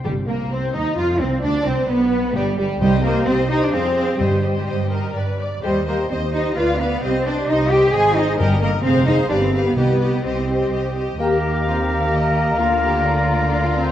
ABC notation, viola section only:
X:1
M:3/4
L:1/8
Q:1/4=130
K:Cm
V:1 name="Viola section"
G, B, C E F C | D C =B,2 G, G, | [Gc] [Gc] [Gc] [Gc] [Ac] [Ac] | [Gc] [Gc] G B =B d |
[Gc] [Gc] [Gc] [Gc] =B B | [Gc] [Gc] [Gc] [Gc] [Ac] [Ac] | B B [Ac] [Ac] G G | G G G G G G |
[K:Eb] B,2 C2 B,2 | B,4 D C |]